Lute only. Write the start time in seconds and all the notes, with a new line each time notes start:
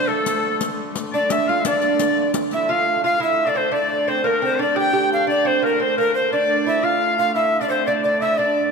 0.09 A3
1.14 D4
1.49 F4
1.66 D4
2.53 E4
2.69 F4
3.04 F4
3.20 E4
3.47 D4
3.55 C4
3.72 D4
4.08 C4
4.24 A#3
4.42 C4
4.59 D4
4.76 G4
4.93 G4
5.27 D4
5.45 C4
5.62 A#3
5.80 C4
5.98 A#3
6.33 D4
6.66 E4
6.83 F4
7.19 F4
7.36 E4
7.61 D4
7.70 C4
7.88 D4
8.05 D4
8.22 E4
8.39 D4